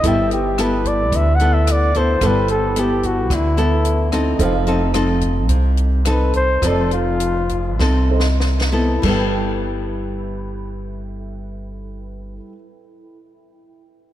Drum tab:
CC |------------------------|------------------------|------------------------|------------------------|
HH |x--x--x--x--x--x--x--x--|x--x--x--x--x--x--x--x--|x--x--x--x--x--x--x--x--|x--x--x--x--------------|
SD |------r-----------r-----|r-----------r--------r--|------r-----------r-----|r-----------o---o-o-o---|
BD |o--------o--o--------o--|o--------o--o--------o--|o--------o--o--------o--|o--------o--o-----------|

CC |x-----------------------|------------------------|
HH |------------------------|------------------------|
SD |------------------------|------------------------|
BD |o-----------------------|------------------------|